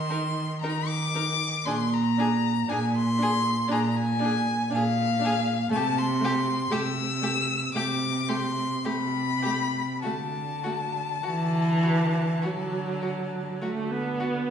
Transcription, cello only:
0.00 0.50 D#3 medium
0.62 1.54 D#3 medium
1.67 2.57 A#2 medium
2.68 3.58 A#2 loud
3.70 4.60 A#2 loud
4.72 5.60 A#2 loud
5.71 6.60 C3 loud
6.71 7.62 C3 medium
7.74 8.71 C3 medium
8.85 9.89 C3 medium
10.03 11.09 D3 medium
11.23 12.28 D3 medium
12.42 13.47 D3 medium
13.60 14.50 D3 medium

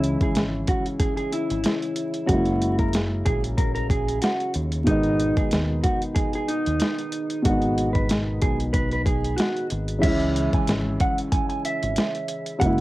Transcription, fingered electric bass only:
0.00 0.15 C#2 loud
0.36 0.64 G#1 medium
1.51 1.63 G#1 medium
2.29 3.22 F#1 loud
3.27 4.19 A#1 medium
4.56 4.84 D#2 medium
4.87 5.31 G#1 loud
5.52 5.80 D#2 medium
6.67 6.79 D#2 medium
7.46 8.38 G#1 loud
8.43 9.35 B1 medium
9.72 10.00 G#1 medium
10.04 10.47 C#2 loud
10.69 10.97 G#1 medium
11.83 11.96 G#1 medium
12.62 12.81 F#1 loud

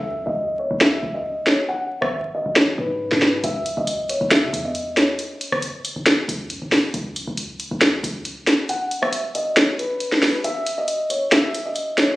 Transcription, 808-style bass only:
0.00 0.25 C#2 loud
0.27 0.69 C#2 loud
0.71 1.02 C#2 loud
1.03 1.45 C#2 loud
2.02 2.44 G#1 loud
2.46 2.77 G#1 loud
2.78 3.10 G#2 loud
3.11 3.42 G#2 loud
3.44 3.76 C#2 loud
3.77 4.19 C#2 loud
4.21 4.44 C#2 loud
4.43 4.53 C#3 loud
4.53 5.16 E2 loud
5.52 5.73 F#1 loud
5.96 6.27 F#1 loud
6.28 6.52 C#2 loud
6.50 6.61 F#2 loud
6.62 6.93 F#1 loud
6.94 7.26 C#2 loud
7.27 7.70 C#2 loud
7.71 8.02 C#2 loud
8.03 8.46 C#2 loud

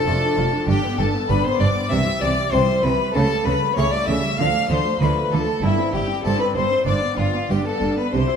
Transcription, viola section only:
0.08 0.21 F4 medium
0.24 0.38 D4 medium
0.38 0.53 F4 medium
0.53 0.67 D4 medium
0.68 0.82 D4 medium
0.84 0.99 B3 medium
1.00 1.15 D4 medium
1.14 1.30 B3 medium
1.30 1.44 D4 medium
1.46 1.61 B3 medium
1.61 1.76 D4 medium
1.75 1.91 B3 medium
1.91 2.05 E3 medium
2.05 2.21 G3 medium
2.21 2.37 E3 medium
2.36 2.52 G3 medium
2.52 2.67 E3 medium
2.67 2.83 G3 medium
2.83 2.99 E3 medium
2.99 3.14 G3 medium
3.14 3.29 A3 medium
3.29 3.45 G3 medium
3.45 3.61 A3 medium
3.60 3.76 G3 medium
3.76 3.91 A3 medium
3.91 4.07 G3 medium
4.07 4.23 A3 medium
4.23 4.38 G3 medium
4.38 4.53 F3 medium
4.54 4.70 A3 medium
4.69 4.85 F3 medium
4.86 5.01 A3 medium
5.01 5.15 F3 medium
5.18 5.33 A3 medium
5.33 5.48 F3 medium
5.47 5.63 A3 medium
5.63 5.77 E4 medium
5.78 5.94 C4 medium
5.93 6.09 E4 medium
6.09 6.24 C4 medium
6.24 6.39 E4 medium
6.38 6.55 C4 medium
6.54 6.70 E4 medium
6.70 6.86 C4 medium
6.86 7.01 D4 medium
7.02 7.18 B3 medium
7.18 7.34 D4 medium
7.34 7.50 B3 medium
7.50 7.65 D4 medium
7.66 7.82 B3 medium
7.82 7.98 D4 medium
7.98 8.14 B3 medium
8.14 8.29 G4 medium
8.30 8.36 E4 medium

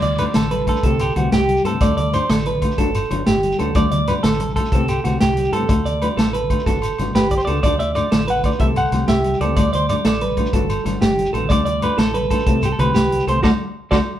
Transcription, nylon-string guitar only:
0.18 0.28 A3 medium
0.18 0.29 D4 medium
0.18 0.30 F#4 medium
0.66 0.77 A3 medium
0.66 0.77 D4 medium
0.66 0.78 F#4 medium
0.84 0.94 E3 medium
0.84 0.94 A3 medium
0.84 0.94 C4 medium
0.84 0.95 G4 medium
1.16 1.26 E3 medium
1.16 1.26 A3 medium
1.16 1.27 C4 medium
1.16 1.27 G4 medium
1.64 1.74 E3 medium
1.64 1.75 A3 medium
1.64 1.75 C4 medium
1.64 1.76 G4 medium
1.81 1.91 A3 medium
1.81 1.91 D4 medium
1.81 1.92 F#4 medium
2.12 2.22 A3 medium
2.12 2.24 D4 medium
2.12 2.24 F#4 medium
2.62 2.72 A3 medium
2.62 2.72 D4 medium
2.62 2.73 F#4 medium
2.78 2.88 F#3 medium
2.78 2.88 B3 medium
2.78 2.89 D4 medium
2.78 2.89 F#4 medium
3.10 3.20 F#3 medium
3.10 3.21 B3 medium
3.10 3.21 D4 medium
3.10 3.22 F#4 medium
3.58 3.68 F#3 medium
3.58 3.69 B3 medium
3.58 3.69 D4 medium
3.58 3.70 F#4 medium
3.75 3.85 A3 medium
3.75 3.85 D4 medium
3.75 3.86 F#4 medium
4.08 4.17 A3 medium
4.08 4.18 D4 medium
4.08 4.19 F#4 medium
4.57 4.67 A3 medium
4.57 4.67 D4 medium
4.57 4.68 F#4 medium
4.72 4.82 E3 medium
4.72 4.83 A3 medium
4.72 4.83 C4 medium
4.72 4.83 G4 medium
5.04 5.14 E3 medium
5.04 5.15 A3 medium
5.04 5.15 C4 medium
5.04 5.15 G4 medium
5.53 5.63 E3 medium
5.53 5.64 A3 medium
5.53 5.64 C4 medium
5.53 5.64 G4 medium
5.68 5.79 A3 medium
5.68 5.79 D4 medium
5.68 5.80 F#4 medium
6.01 6.11 A3 medium
6.01 6.12 D4 medium
6.01 6.13 F#4 medium
6.50 6.60 A3 medium
6.50 6.61 D4 medium
6.50 6.61 F#4 medium
6.66 6.76 B3 medium
6.66 6.77 D4 medium
6.66 6.77 F#4 medium
6.99 7.09 B3 medium
6.99 7.09 D4 medium
6.99 7.10 F#4 medium
7.48 7.57 B3 medium
7.48 7.58 D4 medium
7.48 7.59 F#4 medium
7.64 7.73 A3 medium
7.64 7.74 D4 medium
7.64 7.74 F#4 medium
7.95 8.05 A3 medium
7.95 8.06 D4 medium
7.95 8.07 F#4 medium
8.43 8.53 A3 medium
8.43 8.54 D4 medium
8.43 8.55 F#4 medium
8.60 8.70 E3 medium
8.60 8.70 A3 medium
8.60 8.70 C4 medium
8.60 8.71 G4 medium
8.91 9.02 A3 medium
8.91 9.03 C4 medium
8.91 9.03 G4 medium
8.91 muted nylon-string guitar stroke medium
9.41 9.51 E3 medium
9.41 9.51 A3 medium
9.41 9.52 C4 medium
9.41 9.52 G4 medium
9.57 9.67 A3 medium
9.57 9.67 D4 medium
9.57 9.68 F#4 medium
9.89 9.99 A3 medium
9.89 10.00 D4 medium
9.89 10.01 F#4 medium
10.37 10.47 A3 medium
10.37 10.48 D4 medium
10.37 10.49 F#4 medium
10.53 10.63 F#3 medium
10.53 10.63 B3 medium
10.53 10.64 D4 medium
10.53 10.64 F#4 medium
10.84 10.95 F#3 medium
10.84 10.95 B3 medium
10.84 10.96 D4 medium
10.84 10.96 F#4 medium
11.34 11.44 F#3 medium
11.34 11.44 B3 medium
11.34 11.45 D4 medium
11.34 11.45 F#4 medium
11.50 11.60 A3 medium
11.50 11.60 D4 medium
11.50 11.61 F#4 medium
11.82 11.92 A3 medium
11.82 11.93 D4 medium
11.82 11.93 F#4 medium
12.31 12.40 A3 medium
12.31 12.41 D4 medium
12.31 12.42 F#4 medium
12.48 12.57 E3 medium
12.48 12.57 A3 medium
12.48 12.57 C4 medium
12.48 12.58 G4 medium
12.79 12.89 E3 medium
12.79 12.89 A3 medium
12.79 12.90 C4 medium
12.79 12.90 G4 medium
13.28 13.37 E3 medium
13.28 13.38 A3 medium
13.28 13.38 C4 medium
13.28 13.38 G4 medium
13.44 13.49 A3 loud
13.44 13.49 D4 medium
13.44 13.49 F#4 medium
13.93 13.98 A3 medium
13.93 13.98 D4 medium
13.93 13.97 F#4 medium

